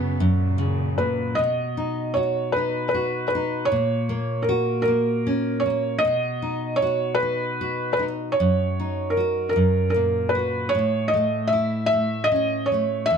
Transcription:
0.00 0.17 F#2 medium
0.00 1.35 F#2 medium
0.00 0.18 C#3 soft
0.00 0.19 C#3 medium
0.00 0.18 B3 medium
0.00 0.19 B3 medium
0.00 0.54 E5 medium
0.20 1.35 F#2 medium
0.20 1.37 A#2 medium
0.20 1.37 C#3 medium
0.58 0.98 C#3 medium
0.98 1.37 A#2 soft
0.98 1.39 B4 medium
1.35 3.67 B2 medium
1.35 2.17 D#5 medium
1.77 2.55 D#4 soft
2.14 2.93 F#4 soft
2.14 2.55 C#5 medium
2.52 2.87 B4 medium
2.56 3.34 D#4 medium
2.89 3.26 B4 medium
2.94 3.69 F#4 medium
3.28 3.70 B4 medium
3.35 3.71 D#4 soft
3.65 4.41 C#5 medium
3.72 5.99 A#2 medium
4.09 4.86 A#3 medium
4.42 4.80 A#4 medium
4.49 5.99 F#4 medium
4.82 5.64 A#4 medium
4.88 5.65 A#3 medium
5.27 6.01 C#4 medium
5.60 6.02 C#5 medium
5.66 6.03 A#3 soft
5.99 6.81 D#5 medium
6.05 8.33 B2 medium
6.42 7.21 D#4 soft
6.76 7.14 C#5 medium
6.82 7.60 F#4 medium
7.15 7.92 B4 medium
7.23 7.98 D#4 soft
7.61 8.35 F#4 soft
7.93 8.02 B4 medium
7.99 8.36 D#4 soft
8.32 9.15 C#5 medium
8.40 9.53 F#2 medium
8.80 9.55 D#4 soft
9.10 9.48 A#4 medium
9.17 9.55 F#4 soft
9.49 9.89 A#4 medium
9.56 10.71 F#2 medium
9.90 10.33 A#4 medium
9.96 10.72 A#2 soft
10.29 10.73 B4 medium
10.35 10.73 F#4 soft
10.69 11.12 C#5 medium
10.75 13.06 A2 medium
11.08 11.51 D#5 medium
11.14 11.92 A3 soft
11.48 11.85 E5 medium
11.53 13.06 E4 soft
11.86 12.30 E5 medium
11.93 12.71 A3 medium
12.24 12.68 D#5 medium
12.32 13.08 C#4 medium
12.66 13.09 C#5 medium
12.72 13.09 A3 soft
13.06 13.18 E5 medium
13.10 13.18 E2 medium

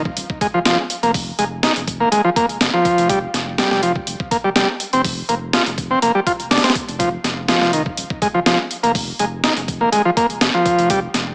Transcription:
0.05 kick medium
0.17 0.25 D#1 medium
0.17 closed hi-hat medium
0.30 kick medium
0.41 0.47 G#3 medium
0.41 kick loud
0.41 closed hi-hat medium
0.54 0.63 F1 soft
0.54 0.59 F3 loud
0.65 0.73 F1 medium
0.65 0.78 F3 medium
0.65 snare loud
0.65 closed hi-hat medium
0.90 closed hi-hat medium
1.03 1.32 F1 medium
1.03 1.11 A#3 loud
1.03 closed hi-hat soft
1.14 kick loud
1.14 open hi-hat medium
1.39 1.68 F1 loud
1.39 1.44 G#3 medium
1.39 closed hi-hat medium
1.63 1.73 D#4 medium
1.63 snare loud
1.63 closed hi-hat medium
1.76 2.05 F1 medium
1.76 closed hi-hat soft
1.87 kick medium
1.87 closed hi-hat medium
2.00 2.09 A#3 medium
2.12 2.20 D#1 loud
2.12 2.21 G#3 loud
2.12 closed hi-hat medium
2.25 2.30 F3 loud
2.36 2.46 A#3 loud
2.36 kick loud
2.36 closed hi-hat medium
2.49 2.58 F1 soft
2.49 closed hi-hat soft
2.61 2.69 F1 medium
2.61 snare loud
2.61 closed hi-hat medium
2.74 3.08 F3 medium
2.85 kick loud
2.85 closed hi-hat medium
2.98 3.27 F1 medium
2.98 closed hi-hat soft
3.09 3.19 G3 medium
3.09 kick loud
3.09 closed hi-hat medium
3.34 3.63 F1 loud
3.34 snare soft
3.34 closed hi-hat medium
3.58 3.70 G3 medium
3.58 snare loud
3.58 closed hi-hat medium
3.71 4.00 F1 medium
3.71 3.81 G3 medium
3.71 snare soft
3.83 3.92 F3 medium
3.83 closed hi-hat medium
3.96 kick medium
4.07 4.15 F1 loud
4.07 closed hi-hat medium
4.20 kick loud
4.31 4.37 A#3 medium
4.31 kick medium
4.31 closed hi-hat medium
4.44 4.54 F1 soft
4.44 4.50 G3 loud
4.56 4.64 F1 medium
4.56 4.68 G3 medium
4.56 snare loud
4.56 closed hi-hat medium
4.80 closed hi-hat medium
4.93 5.22 F1 medium
4.93 5.02 C4 loud
4.93 closed hi-hat soft
5.04 kick loud
5.04 open hi-hat medium
5.29 5.58 F1 loud
5.29 5.35 A#3 medium
5.29 closed hi-hat medium
5.53 5.63 F4 medium
5.53 snare loud
5.53 closed hi-hat medium
5.66 5.95 F1 medium
5.66 closed hi-hat soft
5.78 kick loud
5.78 closed hi-hat medium
5.91 5.99 C4 loud
6.02 6.10 F1 loud
6.02 6.12 A#3 loud
6.02 closed hi-hat medium
6.15 6.20 G3 loud
6.27 6.32 F4 medium
6.27 kick medium
6.27 closed hi-hat medium
6.39 6.49 F1 soft
6.39 closed hi-hat soft
6.51 6.59 F1 medium
6.51 6.63 D4 loud
6.51 snare medium
6.51 closed hi-hat medium
6.58 snare medium
6.58 closed hi-hat medium
6.64 6.72 C4 medium
6.64 snare medium
6.64 closed hi-hat medium
6.70 snare medium
6.70 closed hi-hat medium
6.75 kick loud
6.75 closed hi-hat medium
6.88 7.17 F1 medium
6.88 closed hi-hat soft
6.99 7.09 F3 medium
6.99 kick loud
6.99 closed hi-hat medium
7.24 7.53 F1 loud
7.24 snare soft
7.24 closed hi-hat medium
7.48 7.60 F3 medium
7.48 snare loud
7.48 closed hi-hat medium
7.61 7.90 F1 medium
7.61 7.72 F3 medium
7.61 snare soft
7.73 7.83 D#3 medium
7.73 closed hi-hat medium
7.86 kick medium
7.97 8.05 D#1 medium
7.97 closed hi-hat medium
8.10 kick loud
8.22 8.28 G#3 medium
8.22 kick loud
8.22 closed hi-hat medium
8.34 8.44 F1 soft
8.34 8.40 F3 loud
8.46 8.54 F1 medium
8.46 8.58 F3 medium
8.46 snare loud
8.46 closed hi-hat medium
8.71 closed hi-hat medium
8.83 9.12 F1 medium
8.83 8.92 A#3 loud
8.83 closed hi-hat soft
8.95 kick loud
8.95 open hi-hat medium
9.19 9.49 F1 loud
9.19 9.25 G#3 medium
9.19 closed hi-hat medium
9.44 9.53 D#4 medium
9.44 snare loud
9.44 closed hi-hat medium
9.56 9.85 F1 medium
9.56 closed hi-hat soft
9.68 kick loud
9.68 closed hi-hat medium
9.81 9.89 A#3 medium
9.92 10.00 D#1 loud
9.92 10.02 G#3 loud
9.92 closed hi-hat medium
10.05 10.10 F3 loud
10.17 10.26 A#3 loud
10.17 kick loud
10.17 closed hi-hat medium
10.30 10.39 F1 soft
10.30 closed hi-hat soft
10.41 10.49 F1 loud
10.41 snare loud
10.41 closed hi-hat medium
10.54 10.89 F3 medium
10.66 kick loud
10.66 closed hi-hat medium
10.79 11.07 F1 medium
10.79 closed hi-hat soft
10.90 11.00 G3 medium
10.90 kick loud
10.90 closed hi-hat medium
11.14 11.35 F1 loud
11.14 snare soft
11.14 closed hi-hat medium

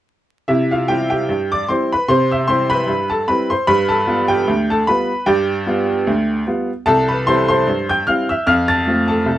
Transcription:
0.48 0.82 C3 medium
0.48 0.69 E4 medium
0.48 0.70 E5 medium
0.71 0.88 F4 medium
0.71 0.89 F5 medium
0.88 1.10 G3 soft
0.88 1.11 C4 soft
0.88 1.11 E4 soft
0.88 1.09 G4 medium
0.88 1.08 G5 medium
1.10 1.48 G4 medium
1.10 1.50 G5 medium
1.29 1.62 G2 medium
1.52 1.68 D5 medium
1.52 1.69 D6 medium
1.68 1.91 G3 soft
1.68 1.91 C4 soft
1.68 1.91 E4 medium
1.68 1.89 C5 soft
1.68 1.90 C6 medium
1.92 2.09 B4 medium
1.92 2.09 B5 medium
2.08 2.42 C3 medium
2.08 2.29 C5 medium
2.08 2.30 C6 medium
2.32 2.48 E5 medium
2.32 2.49 E6 medium
2.48 2.70 G3 soft
2.48 2.70 C4 soft
2.48 2.71 E4 medium
2.48 2.69 C5 medium
2.48 2.70 C6 medium
2.70 3.07 B4 medium
2.70 3.10 B5 medium
2.87 3.22 G2 medium
3.10 3.27 A4 medium
3.10 3.28 A5 medium
3.28 3.50 G3 soft
3.28 3.50 C4 soft
3.28 3.50 E4 soft
3.28 3.48 B4 medium
3.28 3.50 B5 medium
3.50 3.67 C5 medium
3.50 3.68 C6 medium
3.67 4.02 G2 medium
3.67 3.89 B4 medium
3.67 3.89 B5 loud
3.89 4.27 A4 medium
3.89 4.29 A5 medium
4.07 4.29 G3 soft
4.07 4.30 B3 medium
4.07 4.29 F4 medium
4.28 4.67 G4 medium
4.28 4.69 G5 medium
4.48 4.82 D2 medium
4.70 4.87 A4 medium
4.70 4.88 A5 medium
4.87 5.10 G3 medium
4.87 5.10 B3 soft
4.87 5.10 F4 medium
4.87 5.25 B4 medium
4.87 5.27 B5 medium
5.26 5.61 G2 medium
5.26 6.43 G4 medium
5.26 6.43 D5 medium
5.26 6.46 G5 medium
5.66 5.89 G3 medium
5.66 5.89 B3 medium
5.66 5.89 F4 medium
6.07 6.41 D2 medium
6.47 6.69 G3 soft
6.47 6.69 B3 medium
6.47 6.69 F4 medium
6.86 7.21 C2 medium
6.86 7.07 A4 medium
6.86 7.08 A5 loud
7.08 7.26 B4 medium
7.08 7.27 B5 medium
7.27 7.49 G3 medium
7.27 7.49 C4 soft
7.27 7.50 E4 medium
7.27 7.48 C5 medium
7.27 7.47 C6 loud
7.48 7.86 C5 medium
7.48 7.88 C6 medium
7.67 8.01 G2 medium
7.89 8.06 G5 medium
7.89 8.07 G6 loud
8.07 8.29 G3 soft
8.07 8.29 C4 soft
8.07 8.29 E4 soft
8.07 8.28 F5 medium
8.07 8.28 F6 medium
8.29 8.46 E5 medium
8.29 8.47 E6 medium
8.47 8.81 F2 medium
8.47 8.68 F5 medium
8.47 8.68 F6 loud
8.68 9.06 A5 medium
8.68 9.08 A6 medium
8.87 9.08 A3 soft
8.87 9.09 C4 soft
8.87 9.09 F4 medium
9.08 9.38 A4 medium
9.08 9.38 A5 medium
9.26 9.38 C2 medium

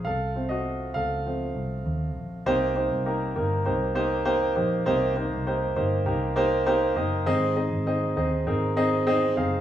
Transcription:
0.05 0.92 C2 loud
0.05 0.48 A4 medium
0.05 0.47 F5 medium
0.35 1.22 A3 soft
0.35 1.22 C4 soft
0.35 1.21 F4 soft
0.49 0.93 F#4 medium
0.49 0.96 D#5 medium
0.94 1.52 C#2 medium
0.94 1.82 A4 medium
0.94 1.81 F5 medium
1.26 1.53 F3 soft
1.26 1.53 A3 soft
1.26 1.53 C4 soft
1.55 1.84 C2 medium
1.86 2.16 D#2 medium
2.16 2.44 A#1 medium
2.46 2.88 C2 medium
2.46 3.32 C3 medium
2.46 2.72 A#3 medium
2.46 2.72 D#4 medium
2.46 2.72 G4 medium
2.46 2.72 C5 loud
2.76 3.01 A#3 medium
2.76 3.01 D#4 medium
2.76 3.01 G4 medium
2.76 3.02 C5 medium
2.91 3.33 C2 medium
3.06 3.31 A#3 medium
3.06 3.31 D#4 medium
3.06 3.32 G4 medium
3.06 3.32 A#4 medium
3.36 3.64 G1 medium
3.36 3.62 A#3 medium
3.36 3.62 D#4 medium
3.36 3.61 G4 medium
3.36 3.62 A#4 medium
3.65 4.53 C2 medium
3.65 3.91 A#3 medium
3.65 3.91 D#4 medium
3.65 3.91 G4 medium
3.65 3.91 C5 medium
3.95 4.21 A#3 medium
3.95 4.21 D#4 medium
3.95 4.21 G4 medium
3.95 4.21 C5 loud
4.25 4.51 A#3 loud
4.25 4.51 D#4 medium
4.25 4.51 G4 medium
4.25 4.51 C5 loud
4.56 4.85 A#1 medium
4.56 4.82 A#3 medium
4.56 4.81 D#4 medium
4.56 4.82 G4 medium
4.56 4.82 C5 medium
4.86 5.29 C2 loud
4.86 5.73 C3 medium
4.86 5.12 A#3 loud
4.86 5.12 D#4 medium
4.86 5.12 G4 medium
4.86 5.12 C5 loud
5.16 5.42 A#3 medium
5.16 5.42 D#4 medium
5.16 5.42 G4 medium
5.16 5.42 C5 medium
5.32 5.74 C2 medium
5.47 5.72 A#3 medium
5.47 5.72 D#4 medium
5.47 5.72 G4 medium
5.47 5.72 C5 medium
5.76 6.05 G1 medium
5.76 6.02 A#3 medium
5.76 6.02 D#4 medium
5.76 6.02 G4 medium
5.76 6.02 C5 medium
6.06 6.93 C2 medium
6.06 6.32 A#3 medium
6.06 6.32 D#4 medium
6.06 6.32 G4 medium
6.06 6.32 A#4 medium
6.36 6.62 A#3 loud
6.36 6.62 D#4 medium
6.36 6.62 G4 medium
6.36 6.62 C5 loud
6.66 6.92 A#3 loud
6.66 6.92 D#4 medium
6.66 6.92 G4 medium
6.66 6.92 C5 loud
6.66 6.95 A#5 medium
6.96 7.25 F#1 medium
6.96 7.22 A#3 medium
6.96 7.22 D#4 medium
6.96 7.22 G4 medium
6.96 7.22 D#5 medium
7.26 7.69 G#1 loud
7.26 8.13 G#2 medium
7.26 7.52 C4 loud
7.26 7.52 D#4 medium
7.26 7.52 G#4 medium
7.26 7.52 D#5 loud
7.56 7.82 C4 medium
7.56 7.82 D#4 medium
7.56 7.82 G#4 medium
7.56 7.82 D#5 medium
7.71 8.14 G#1 medium
7.87 8.12 C4 medium
7.87 8.12 D#4 medium
7.87 8.12 G#4 medium
7.87 8.12 D#5 medium
8.17 8.45 D#2 medium
8.17 8.42 C4 medium
8.17 8.42 D#4 medium
8.17 8.43 G#4 medium
8.17 8.43 D#5 medium
8.47 9.33 G#1 loud
8.47 8.72 C4 medium
8.47 8.73 D#4 medium
8.47 8.72 G#4 medium
8.47 8.73 A#4 medium
8.76 9.02 C4 loud
8.76 9.02 D#4 medium
8.76 9.03 G#4 medium
8.76 9.03 D#5 loud
9.07 9.32 C4 loud
9.07 9.33 D#4 medium
9.07 9.32 G#4 medium
9.07 9.33 D#5 loud
9.37 9.61 F#1 medium
9.37 9.61 C4 medium
9.37 9.61 D#4 medium
9.37 9.61 G#4 medium
9.37 9.61 F5 medium

